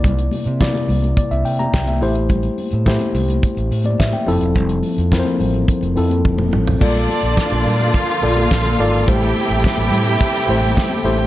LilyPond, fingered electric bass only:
\new Staff \with { instrumentName = "Fingered electric bass" } { \clef bass \time 4/4 \key bes \lydian \tempo 4 = 106 c,8 r16 c8 r16 c,8 r16 c,16 c8 c,8 a,,8~ | a,,8 r16 a,8 r16 c,8 r16 a,,16 a,8 a,16 r16 f,,16 e,,16 | f,,8 r16 f,8 r16 a,,8 r16 f,,16 f,8 f,,8 a,,8 | bes,,8 r16 bes,,16 r16 bes,,16 bes,8 r8 bes,,8 bes,,8 aes,,8 |
a,,8 r16 a,,16 r16 a,,16 a,8 r8 a,,8 r8 a,,8 | }